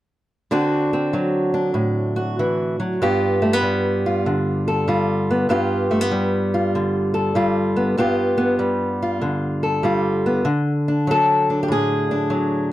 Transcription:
0.51 2.98 D3 medium
0.51 0.92 C4 medium
0.51 1.53 D4 medium
0.51 2.15 F#4 medium
0.93 2.98 C4 medium
1.13 2.38 F#3 medium
1.54 3.02 D4 soft
1.74 2.97 A2 medium
2.16 3.00 F#4 medium
2.39 2.79 E3 medium
2.80 3.00 F#3 medium
3.02 5.49 G2 medium
3.02 3.42 B3 medium
3.02 4.06 F4 medium
3.02 4.67 G4 medium
3.42 3.53 A3 medium
3.53 5.29 B3 soft
3.62 4.87 G3 medium
4.06 4.88 F4 medium
4.26 5.47 D3 medium
4.68 5.47 A4 medium
4.88 5.53 G3 medium
4.88 5.50 F4 medium
5.31 5.49 B3 medium
5.49 7.95 G2 medium
5.49 5.90 B3 medium
5.49 6.54 F4 medium
5.49 7.14 G4 medium
5.91 6.01 A3 medium
6.01 7.75 B3 soft
6.11 7.34 G3 medium
6.54 7.35 F4 medium
6.75 7.96 D3 medium
7.14 7.95 A4 medium
7.35 7.95 G3 medium
7.35 7.95 F4 medium
7.76 7.95 B3 soft
7.98 10.43 G2 medium
7.98 8.36 B3 medium
7.98 9.01 F4 medium
7.98 9.63 G4 medium
8.38 10.24 B3 medium
8.59 9.82 G3 medium
9.02 9.84 F4 soft
9.22 10.43 D3 medium
9.63 10.43 A4 soft
9.83 10.43 G3 medium
9.83 10.43 F4 medium
10.26 10.43 B3 soft
10.45 12.72 D3 medium
10.88 11.49 D4 soft
11.07 12.29 F#3 medium
11.07 11.62 A4 medium
11.50 12.11 D4 soft
11.63 11.68 G4 medium
11.68 12.72 A2 medium
11.68 12.71 G#4 medium
12.11 12.72 D4 soft
12.30 12.72 F#3 medium

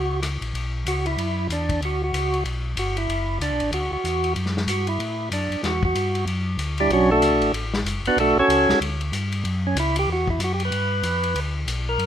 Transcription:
0.00 0.38 C#2 medium
0.00 0.20 F#4 medium
0.23 cross-stick medium
0.23 hi-hat pedal medium
0.23 ride medium
0.41 0.53 A#1 medium
0.41 ride soft
0.54 0.85 B1 medium
0.54 ride soft
0.85 1.17 C#2 medium
0.85 1.06 F#4 medium
0.85 hi-hat pedal medium
0.85 ride medium
1.06 1.47 E4 medium
1.06 ride soft
1.17 1.48 F#2 medium
1.17 ride medium
1.49 1.80 E2 medium
1.49 1.81 D4 medium
1.49 hi-hat pedal medium
1.49 ride medium
1.69 kick soft
1.69 ride soft
1.81 2.12 D2 medium
1.81 ride soft
1.85 2.02 F#4 medium
2.04 2.44 F#4 medium
2.13 2.44 C#2 medium
2.13 hi-hat pedal medium
2.13 ride medium
2.34 ride soft
2.44 2.76 B1 medium
2.44 ride medium
2.76 3.07 G1 medium
2.76 2.97 F#4 medium
2.76 hi-hat pedal soft
2.76 ride medium
2.97 3.38 E4 medium
2.97 ride soft
3.08 3.39 F#1 medium
3.08 ride medium
3.40 3.51 C#2 medium
3.40 3.71 D4 medium
3.40 hi-hat pedal soft
3.40 ride medium
3.51 3.62 B1 medium
3.60 3.71 A1 medium
3.60 ride soft
3.72 3.90 D2 medium
3.72 3.92 F#4 medium
3.72 ride medium
3.91 3.97 D2 soft
3.91 4.34 F#4 medium
4.04 4.35 E2 medium
4.04 hi-hat pedal medium
4.04 ride medium
4.24 ride soft
4.36 4.67 F#2 medium
4.36 ride medium
4.46 snare soft
4.57 snare soft
4.67 4.98 G2 medium
4.67 4.87 F#4 medium
4.67 hi-hat pedal medium
4.67 ride medium
4.87 5.29 E4 medium
4.87 ride soft
4.99 5.30 A2 medium
4.99 ride medium
5.31 5.49 F#2 medium
5.31 5.62 D4 medium
5.31 hi-hat pedal medium
5.31 ride medium
5.50 5.57 F#2 soft
5.50 ride soft
5.63 5.94 E2 medium
5.63 5.83 F#4 medium
5.63 snare soft
5.63 ride soft
5.83 6.25 F#4 medium
5.83 kick medium
5.95 6.26 G2 medium
5.95 hi-hat pedal soft
5.95 ride medium
6.15 ride soft
6.26 6.57 F#2 medium
6.26 ride medium
6.58 6.89 D2 medium
6.58 hi-hat pedal medium
6.58 ride medium
6.78 6.91 G3 medium
6.78 6.91 D4 medium
6.78 6.91 E4 medium
6.78 6.91 G4 medium
6.78 ride soft
6.89 7.21 B1 medium
6.89 7.11 F#3 medium
6.89 7.10 C#4 medium
6.89 7.11 F#4 medium
6.89 ride medium
6.93 7.11 D4 medium
7.11 7.52 A3 medium
7.11 7.52 D4 medium
7.11 7.52 F#4 medium
7.11 7.52 A4 medium
7.21 7.32 C#2 medium
7.21 hi-hat pedal medium
7.21 ride medium
7.31 7.43 B1 medium
7.41 7.51 A1 medium
7.41 ride soft
7.52 7.84 A1 medium
7.52 ride medium
7.74 snare soft
7.84 8.02 F#1 medium
7.84 hi-hat pedal medium
7.84 ride medium
8.04 8.10 F#1 soft
8.04 8.18 B3 medium
8.04 8.18 B4 loud
8.04 ride medium
8.08 8.19 D4 medium
8.08 8.19 F#4 medium
8.16 8.35 B1 medium
8.16 8.38 D4 medium
8.16 8.38 A4 medium
8.16 ride medium
8.21 8.38 A3 medium
8.21 8.38 F#4 medium
8.36 8.42 B1 soft
8.36 8.80 C#4 medium
8.36 8.79 F#4 medium
8.36 8.80 A4 medium
8.36 8.79 C#5 medium
8.48 8.67 C#2 medium
8.48 hi-hat pedal medium
8.48 ride medium
8.68 8.74 C#2 soft
8.68 snare soft
8.80 9.12 D2 medium
8.80 ride medium
9.01 ride soft
9.12 9.44 G2 medium
9.12 hi-hat pedal medium
9.12 ride medium
9.32 ride soft
9.44 9.75 F#2 medium
9.44 ride medium
9.67 9.78 C#4 medium
9.75 10.07 C#2 medium
9.75 hi-hat pedal medium
9.75 ride medium
9.80 9.97 E4 medium
9.96 10.10 G4 loud
9.96 ride medium
10.07 10.39 E2 medium
10.12 10.29 F#4 medium
10.27 10.41 E4 medium
10.27 kick medium
10.39 10.71 F#2 medium
10.39 hi-hat pedal medium
10.39 ride medium
10.44 10.53 F#4 medium
10.54 10.63 G4 medium
10.60 ride soft
10.65 11.40 B4 medium
10.71 11.03 G2 medium
10.71 ride medium
11.03 11.34 F2 medium
11.03 hi-hat pedal medium
11.03 ride medium
11.23 ride soft
11.34 11.66 D2 medium
11.34 ride medium
11.67 11.98 B1 medium
11.67 hi-hat pedal medium
11.67 ride medium
11.89 12.06 A#4 medium
11.98 12.06 F#2 medium
11.98 ride medium

